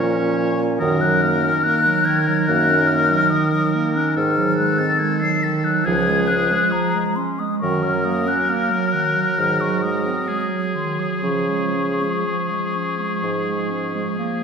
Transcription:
0.00 0.80 A#2 medium
0.00 0.62 F3 medium
0.00 0.79 C#4 medium
0.00 0.63 C#5 medium
0.79 1.51 F#2 medium
0.79 5.86 D#3 medium
0.79 1.03 D#3 medium
0.79 4.12 A#4 medium
0.79 1.02 D#6 medium
1.01 1.24 F#3 medium
1.01 1.23 F#6 medium
1.22 1.46 A#3 medium
1.22 1.65 F6 medium
1.45 1.67 C#4 soft
1.63 1.88 A#3 medium
1.63 2.07 F#6 medium
1.86 2.08 F#3 medium
2.05 2.30 D#3 medium
2.05 2.48 G#6 medium
2.28 2.47 F#3 soft
2.47 3.17 F#2 medium
2.47 2.71 A#3 medium
2.47 2.89 F#6 medium
2.69 2.91 C#4 soft
2.87 3.13 A#3 medium
2.87 3.31 F6 medium
3.11 3.34 F#3 medium
3.30 3.55 D#3 medium
3.30 3.72 D#6 medium
3.54 3.76 F#3 soft
3.75 3.97 A#3 medium
3.95 4.17 C#4 medium
3.95 4.18 F#6 medium
4.16 4.86 G#2 medium
4.16 4.39 D#3 medium
4.16 5.87 A4 medium
4.16 4.57 F6 medium
4.37 4.60 F#3 medium
4.57 4.81 G#3 soft
4.57 4.80 F#6 medium
4.78 5.02 C4 soft
4.78 5.01 A6 medium
4.99 5.23 G#3 medium
4.99 5.21 G#6 medium
5.22 5.44 F#3 soft
5.22 5.45 C7 medium
5.42 5.66 D#3 medium
5.42 5.66 A6 medium
5.64 5.86 F#3 soft
5.64 5.86 F#6 medium
5.85 6.58 C#2 medium
5.85 7.33 F3 medium
5.85 6.09 F3 medium
5.85 7.34 G#4 medium
5.85 6.29 G#6 medium
6.07 6.31 G#3 medium
6.27 6.52 C#4 soft
6.27 6.73 F#6 medium
6.51 6.74 G#3 medium
6.72 6.96 F3 medium
6.72 7.17 A#5 medium
6.95 7.18 G#3 soft
7.16 7.41 C#4 medium
7.16 7.40 C6 medium
7.39 7.61 G#3 medium
7.39 7.59 D#6 medium
7.60 8.35 F#2 medium
7.60 7.84 D#3 medium
7.60 11.19 F#3 medium
7.60 10.29 A#4 medium
7.60 7.84 C#6 medium
7.83 8.07 F#3 medium
7.83 8.06 F6 medium
8.05 8.29 A#3 soft
8.05 8.29 D#6 medium
8.27 8.51 C#4 soft
8.27 8.51 F#6 medium
8.49 8.73 A#3 medium
8.49 8.94 F6 medium
8.71 8.95 F#3 soft
8.93 9.18 D#3 soft
8.93 9.39 F#6 medium
9.16 9.38 F#3 soft
9.38 10.13 G#2 medium
9.38 9.62 D#3 soft
9.38 9.62 F6 medium
9.60 9.84 F#3 soft
9.60 9.84 C#6 medium
9.82 10.07 G#3 soft
9.82 10.47 D#6 medium
10.06 10.30 C4 soft
10.28 10.53 G#3 soft
10.28 14.44 G#4 soft
10.51 10.77 F#3 soft
10.75 11.00 D#3 soft
10.75 11.01 C6 medium
10.99 11.23 F#3 soft
10.99 11.23 D#6 soft
11.23 12.08 C#3 medium
11.23 14.44 F3 soft
11.23 11.51 F3 soft
11.23 14.15 C#6 medium
11.49 11.77 G#3 soft
11.75 12.02 C#4 soft
12.01 12.27 G#3 soft
12.26 12.53 F3 soft
12.51 12.76 G#3 soft
12.75 13.00 C#4 soft
12.99 13.22 G#3 soft
13.23 14.03 G#2 soft
13.23 13.48 F3 soft
13.47 13.72 G#3 soft
13.70 13.96 C#4 soft
13.94 14.17 G#3 soft
14.18 14.44 A#3 medium

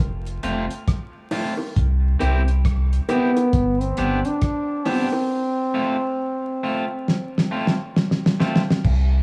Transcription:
0.00 0.38 F1 loud
0.26 closed hi-hat soft
0.43 0.68 F1 medium
0.43 0.64 A3 medium
0.43 0.64 C4 medium
0.43 0.65 F4 loud
0.43 closed hi-hat medium
0.70 closed hi-hat medium
0.88 kick loud
0.88 cross-stick loud
0.88 closed hi-hat medium
1.31 1.53 A3 medium
1.31 1.53 C4 medium
1.31 1.53 F4 loud
1.31 open hi-hat medium
1.31 low bongo medium
1.57 high bongo medium
1.76 2.16 C2 loud
1.76 kick loud
1.76 closed hi-hat medium
2.19 2.99 C2 medium
2.19 2.41 C4 medium
2.19 2.41 E4 medium
2.19 2.41 G4 loud
2.19 closed hi-hat medium
2.19 high bongo soft
2.48 closed hi-hat medium
2.65 kick loud
2.65 cross-stick loud
2.65 closed hi-hat loud
2.93 closed hi-hat medium
3.09 3.83 B3 medium
3.09 3.30 C4 medium
3.09 3.30 E4 medium
3.09 3.30 G4 medium
3.09 closed hi-hat medium
3.09 high bongo medium
3.37 closed hi-hat medium
3.37 high bongo medium
3.53 3.93 G1 loud
3.53 kick loud
3.53 closed hi-hat medium
3.81 4.27 C4 medium
3.81 closed hi-hat soft
3.97 4.23 G1 medium
3.97 4.19 B3 medium
3.97 4.19 D4 medium
3.97 4.19 G4 medium
3.97 cross-stick medium
3.97 closed hi-hat medium
4.25 4.89 D4 loud
4.25 closed hi-hat soft
4.41 kick loud
4.41 cross-stick loud
4.41 closed hi-hat loud
4.85 5.07 B3 medium
4.85 7.97 C4 medium
4.85 5.07 D4 medium
4.85 5.07 G4 medium
4.85 open hi-hat medium
4.85 low bongo medium
5.12 high bongo medium
5.74 5.95 A3 medium
5.74 5.95 C4 medium
5.74 5.96 F4 medium
6.63 6.84 A3 medium
6.63 6.84 C4 medium
6.63 6.85 F4 medium
7.08 snare medium
7.38 snare medium
7.51 7.72 A3 medium
7.51 7.73 C4 medium
7.51 7.73 F4 medium
7.67 snare medium
7.96 snare medium
8.11 snare medium
8.26 snare medium
8.40 8.61 A3 medium
8.40 8.61 C4 medium
8.40 8.61 F4 medium
8.40 snare medium
8.56 snare loud
8.71 snare medium
8.85 9.23 C2 loud
8.85 kick loud
8.85 crash medium

